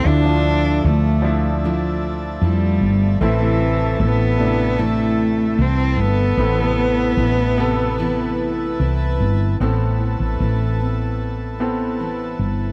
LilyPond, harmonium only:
\new Staff \with { instrumentName = "Harmonium" } { \time 4/4 \key a \minor \tempo 4 = 76 << { <d'' a''>1 | <a' a''>1 | <b' a''>1 | <b' a''>1 | } \\ { <f e''>1 | <e' e''>1~ | <e' e''>1 | <e' a'>1 | } >> }